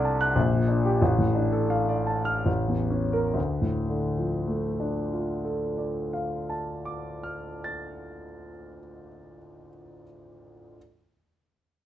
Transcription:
grand piano
Already playing: C2 C3 D4 A4 D5 F#5
0.05 A5
0.21 F#6
0.35 A#1
0.53 A#2
0.68 D4
0.85 G4
1.02 A1
1.18 A2
1.35 D4
1.53 A4
1.70 F5
1.89 D5
2.07 A5
2.25 F6
2.46 A1
2.68 E2
2.90 C#4
3.13 A#4
3.34 D2
3.62 A2
3.89 D3
4.17 F3
4.48 A3
4.80 D4
5.13 F4
5.45 A4
5.78 D5
6.13 F5
6.50 A5
6.85 D6
7.23 F6
7.64 A6

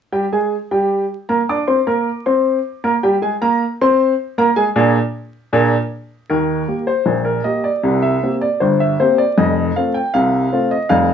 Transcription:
upright piano
0.12 G3 G4 G5
0.32 G#3 G#4 G#5
0.71 G3 G4 G5
1.29 A#3 A#4 A#5
1.49 D4 D5 D6
1.68 C4 C5 C6
1.87 A#3 A#4 A#5
2.26 C4 C5 C6
2.84 A#3 A#4 A#5
3.03 G3 G4 G5
3.22 G#3 G#4 G#5
3.41 A#3 A#4 A#5
3.81 C4 C5 C6
4.38 A#3 A#4 A#5
4.56 G#3 G#4 G#5
4.76 A#2 A#3 D4 G#4
5.53 A#2 A#3 D4 G#4
6.30 D#2 D#3 A#4
6.68 A#3 G4
6.87 C5
7.06 A#1 A#2
7.25 A#4
7.44 A#3 G4 D#5
7.64 D5
7.83 C2 C3
8.02 E5
8.23 A#3 C4 G4
8.41 D5
8.60 G1 G2 C5
8.80 E5
9.00 A#3 C4 G4 C5
9.18 D5
9.38 F1 F2 D#5
9.76 A3 C4 F4 F5
9.94 G5
10.14 C2 C3 F5
10.53 A3 C4 F4
10.71 D#5
10.89 F1 F2 F5

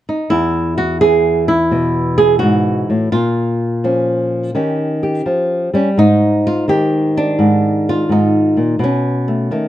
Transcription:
nylon-string guitar
0.09 D#4
0.30 E2 E4
0.78 F#4
1.01 E3 G#4
1.48 E4
1.71 B2
2.18 G#4
2.39 G#2 F#4
2.90 A2
3.12 A#2 F4
3.84 F3 C#4
4.55 D#3 C#4 G4
5.03 G4
5.26 F3
5.74 G3 C#4
5.97 G#2 D#4
6.47 F4
6.68 D#3 G4
7.17 D4
7.39 G#2
7.89 F4
8.09 G#2 D#4
8.57 A#2
8.79 B2
8.84 C#4
9.28 A3
9.51 D#3 A3

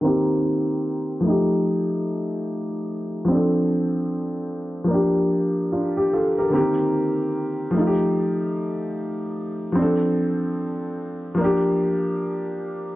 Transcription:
upright piano
0.01 D#3 A#3 C4
0.06 G4
1.21 F3 A3
1.27 D#4 G4
3.25 F3 C4
3.31 D4 A4
4.84 F3 A#3
4.91 D4 G4
5.72 D4 F4
5.97 G4
6.13 F4 A4
6.38 G4 A#4
6.50 D3 A#3 C4
6.55 D#3 G4
7.71 F3 A3
7.77 D#4 F4
7.87 G4
9.72 F3 C4
9.79 D4 A4
11.35 F3 A#3
11.41 D4 G4

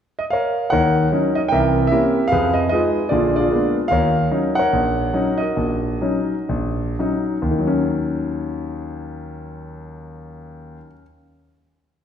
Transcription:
grand piano
0.19 D#5
0.30 A#4 C#5 F5
0.70 D#2 D#3 A#4 C#5 F#5
1.12 F#3 C#4 D#4
1.35 D#5
1.48 C2 E3 A#4 G5
1.53 E5
1.87 G4 A#4 E5
1.92 A#3 C4 C#4 E4
2.28 F5
2.32 F2 G#4 B4
2.54 D#5
2.69 G#3 D#4 F4 D#5
2.74 G#4 B4
3.09 A#1 D3 F4 D5
3.13 G#4
3.36 G#4 D5
3.40 F4
3.51 G#3 A#3 B3 D4
3.88 D#2 F5
3.92 A#4 C#5
4.31 F#3 C#4 D#4
4.55 A#4 C#5 F#5
4.73 A#1
5.14 F#3 C#4 D#4
5.38 F#4 D#5
5.42 A#4
5.56 A#1
6.01 F#3 C#4 D#4
6.49 A#1
6.99 F#3 C#4 D#4
7.42 D#2
7.51 D#3
7.59 F#3
7.67 C#4

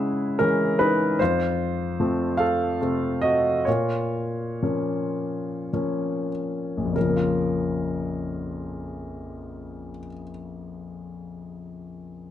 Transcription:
grand piano
Already playing: C#3 G#3 C#4 E4 G#4 E5
0.39 E3 G#3 C#4 A#4
0.79 D#4 B4
1.19 F2 F4 C5
2.00 F3 A3 C4
2.37 A4 F5
2.80 C3 A3 C4
3.21 F#4 D#5
3.65 A#2 F4 C#5
4.63 F3 A#3 C#4
5.73 F3 A#3 C#4
6.77 A#1
6.85 F2
6.93 C#3 A#4
7.01 F3
7.09 A#3
7.16 F4

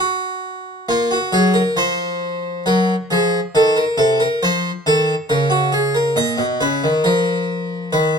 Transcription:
harpsichord
0.00 F#4
0.89 A#3 F4
1.11 F#4
1.32 F#3 G#4
1.54 A#4
1.77 F3 C5
2.66 F#3 A#4
3.10 F3 G#4
3.55 D#3 A4
3.77 A#4
3.98 C3 A4
4.20 A#4
4.43 F3 C5
4.86 D#3 A4
5.29 C#3 A#4
5.50 F#4
5.72 G#4
5.95 A#4
6.16 A#2 D#5
6.38 B2
6.61 C#3 B4
6.84 D#3
7.04 F3 A#4
7.93 D#3 B4

